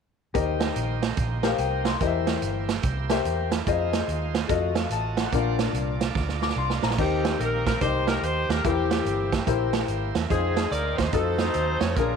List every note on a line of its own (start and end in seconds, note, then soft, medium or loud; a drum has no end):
0.34 0.70 D#2 medium
0.34 0.99 D#3 medium
0.34 1.97 A#3 medium
0.34 1.97 D#4 medium
0.34 0.92 G4 medium
0.34 1.98 G4 medium
0.34 0.92 A#4 medium
0.34 1.97 C5 medium
0.34 0.92 C5 medium
0.34 0.93 D#5 medium
0.34 kick loud
0.34 closed hi-hat medium
0.60 snare loud
0.60 closed hi-hat medium
0.76 1.11 A#1 medium
0.76 closed hi-hat medium
1.03 snare loud
1.03 closed hi-hat medium
1.17 1.53 A#1 medium
1.17 kick loud
1.17 closed hi-hat medium
1.43 1.84 G4 medium
1.43 1.84 A#4 medium
1.43 1.84 C5 medium
1.43 1.84 F5 medium
1.43 snare loud
1.43 closed hi-hat medium
1.58 1.94 C2 medium
1.58 1.84 G5 medium
1.58 closed hi-hat medium
1.85 2.25 C6 medium
1.85 snare medium
1.85 closed hi-hat medium
2.00 2.36 E2 medium
2.00 2.65 E3 medium
2.00 3.63 A#3 medium
2.00 3.23 E4 medium
2.00 3.23 G4 medium
2.00 2.58 G4 medium
2.00 2.07 A#4 medium
2.00 2.58 A#4 medium
2.00 2.59 C5 medium
2.00 2.08 D#5 medium
2.00 kick loud
2.00 closed hi-hat medium
2.06 3.25 C5 medium
2.06 2.61 E5 medium
2.27 snare loud
2.27 closed hi-hat medium
2.42 2.77 G1 medium
2.42 closed hi-hat medium
2.69 snare medium
2.69 closed hi-hat medium
2.83 3.19 C2 medium
2.83 kick loud
2.83 closed hi-hat medium
3.10 3.50 G4 medium
3.10 3.50 A#4 medium
3.10 3.51 C5 medium
3.10 3.51 E5 medium
3.10 snare loud
3.10 closed hi-hat medium
3.25 3.61 E2 medium
3.25 3.51 G4 soft
3.25 3.51 C5 medium
3.25 closed hi-hat medium
3.51 3.92 E4 medium
3.51 3.91 A#4 medium
3.51 snare medium
3.51 closed hi-hat medium
3.66 4.02 F2 medium
3.66 4.48 G#3 medium
3.66 4.48 D#4 medium
3.66 4.48 F4 medium
3.66 4.24 F4 medium
3.66 4.24 G#4 medium
3.66 4.48 C5 medium
3.66 4.25 C5 medium
3.66 4.25 D#5 medium
3.66 kick medium
3.66 closed hi-hat medium
3.93 snare loud
3.93 closed hi-hat medium
4.08 4.43 D#2 medium
4.08 closed hi-hat medium
4.35 snare medium
4.35 closed hi-hat medium
4.48 4.85 F2 loud
4.48 5.31 A3 medium
4.48 4.70 F4 medium
4.48 5.31 F4 medium
4.48 4.70 F#4 medium
4.48 5.31 F#4 medium
4.48 4.71 A4 medium
4.48 4.90 D#5 medium
4.48 4.71 D#5 medium
4.48 kick loud
4.48 closed hi-hat medium
4.75 4.90 F5 medium
4.75 snare loud
4.75 closed hi-hat medium
4.90 5.26 A1 medium
4.90 5.16 D#5 soft
4.90 5.16 A5 medium
4.90 5.17 A5 medium
4.90 closed hi-hat medium
5.17 5.57 C5 medium
5.17 5.56 F#5 medium
5.17 5.57 F#5 medium
5.17 snare loud
5.17 closed hi-hat medium
5.32 5.68 A#1 medium
5.32 5.97 A#2 medium
5.32 6.95 A#3 medium
5.32 6.96 D4 medium
5.32 5.91 D4 medium
5.32 6.95 F4 medium
5.32 5.91 F4 medium
5.32 5.91 A#4 medium
5.32 6.95 D5 medium
5.32 5.92 D5 medium
5.32 kick loud
5.32 closed hi-hat medium
5.59 snare loud
5.59 closed hi-hat medium
5.73 6.09 C2 medium
5.73 closed hi-hat medium
6.01 snare medium
6.01 closed hi-hat medium
6.15 6.51 D2 medium
6.15 kick medium
6.15 snare soft
6.29 snare soft
6.42 6.57 D6 medium
6.42 snare medium
6.49 snare medium
6.56 6.79 C2 medium
6.56 6.83 C6 medium
6.70 snare medium
6.83 6.96 A#1 medium
6.83 7.23 A#5 medium
6.83 snare medium
6.90 snare medium
6.98 7.34 D#2 medium
6.98 7.63 D#3 medium
6.98 8.61 A#3 medium
6.98 7.78 A#3 medium
6.98 7.77 C4 medium
6.98 7.56 D#4 medium
6.98 8.61 D#4 medium
6.98 7.38 G4 medium
6.98 7.56 G4 medium
6.98 8.62 G4 soft
6.98 7.43 G4 medium
6.98 7.57 A#4 medium
6.98 8.62 C5 medium
6.98 7.57 C5 medium
6.98 kick medium
6.98 crash medium
7.25 snare loud
7.25 closed hi-hat medium
7.39 7.75 A#1 medium
7.39 7.64 A#4 medium
7.39 7.67 A#4 medium
7.39 closed hi-hat medium
7.66 7.81 A#4 medium
7.66 7.84 A#4 medium
7.66 kick medium
7.66 snare medium
7.66 closed hi-hat medium
7.81 8.17 C2 loud
7.81 8.39 D#4 medium
7.81 8.60 G4 medium
7.81 8.39 G4 medium
7.81 8.39 A#4 medium
7.81 8.06 C5 medium
7.81 8.07 C5 loud
7.81 8.40 D#5 medium
7.81 kick medium
7.81 closed hi-hat loud
8.07 8.23 A#4 medium
8.07 8.22 A#4 medium
8.07 snare loud
8.07 closed hi-hat medium
8.22 8.45 D#2 medium
8.22 8.50 C5 medium
8.22 8.51 C5 medium
8.22 closed hi-hat medium
8.49 8.62 D#2 medium
8.49 8.66 A#4 medium
8.49 8.65 A#4 medium
8.49 snare loud
8.49 closed hi-hat medium
8.64 9.00 E2 medium
8.64 9.29 E3 medium
8.64 10.27 A#3 medium
8.64 8.92 A#3 medium
8.64 8.91 C4 medium
8.64 10.27 E4 medium
8.64 9.22 E4 medium
8.64 9.86 G4 soft
8.64 8.91 G4 medium
8.64 9.22 G4 medium
8.64 8.90 G4 medium
8.64 9.22 A#4 medium
8.64 8.71 B4 medium
8.64 9.86 C5 medium
8.64 kick loud
8.64 closed hi-hat medium
8.71 9.25 C5 medium
8.91 9.71 A#3 medium
8.91 9.71 C4 medium
8.91 9.43 G4 medium
8.91 9.44 G4 medium
8.91 snare loud
8.91 closed hi-hat medium
9.05 9.41 G1 medium
9.05 closed hi-hat medium
9.32 kick medium
9.32 snare loud
9.32 closed hi-hat medium
9.47 9.82 A#1 medium
9.47 10.05 E4 medium
9.47 10.05 G4 medium
9.47 10.05 A#4 medium
9.47 10.05 C5 medium
9.47 kick loud
9.47 closed hi-hat medium
9.73 snare loud
9.73 closed hi-hat medium
9.88 10.11 G#1 medium
9.88 10.15 G4 medium
9.88 10.15 C5 medium
9.88 closed hi-hat medium
10.15 10.28 E2 medium
10.15 10.55 A#4 soft
10.15 10.55 E5 medium
10.15 snare loud
10.15 closed hi-hat medium
10.30 10.65 F2 loud
10.30 11.11 G#3 medium
10.30 11.10 C4 medium
10.30 10.87 D#4 medium
10.30 11.11 D#4 medium
10.30 11.09 D#4 medium
10.30 11.11 F4 soft
10.30 10.88 F4 medium
10.30 10.88 G#4 medium
10.30 10.69 G#4 medium
10.30 10.36 B4 soft
10.30 10.88 C5 medium
10.30 kick loud
10.30 closed hi-hat medium
10.35 11.14 C5 medium
10.57 snare loud
10.57 closed hi-hat medium
10.71 10.94 D2 medium
10.71 10.98 A#4 medium
10.71 10.99 D5 medium
10.71 closed hi-hat medium
10.97 11.11 D#2 medium
10.97 11.13 C5 medium
10.97 11.12 C5 medium
10.97 kick medium
10.97 snare loud
10.97 closed hi-hat medium
11.12 11.48 F2 loud
11.12 11.94 F3 medium
11.12 11.94 F#3 medium
11.12 11.92 C4 medium
11.12 11.94 D#4 soft
11.12 11.71 D#4 medium
11.12 11.38 D#4 medium
11.12 11.71 F4 medium
11.12 11.71 F#4 medium
11.12 11.94 A4 medium
11.12 11.38 A4 medium
11.12 11.71 A4 medium
11.12 11.98 C5 loud
11.12 kick loud
11.12 closed hi-hat medium
11.38 11.92 D#4 medium
11.38 11.92 A4 medium
11.38 11.81 C5 loud
11.38 snare loud
11.38 closed hi-hat medium
11.54 11.77 D#2 medium
11.54 closed hi-hat medium
11.80 11.94 F2 medium
11.80 11.96 C#5 medium
11.80 snare loud
11.80 closed hi-hat medium
11.96 12.16 A#1 loud
11.96 12.16 A#2 medium
11.96 12.16 F3 medium
11.96 12.16 A#3 medium
11.96 12.03 C#4 soft
11.96 12.16 D4 medium
11.96 12.16 F4 medium
11.96 12.16 G#4 medium
11.96 12.16 A#4 medium
11.96 kick loud
11.96 closed hi-hat medium
12.02 12.16 D4 medium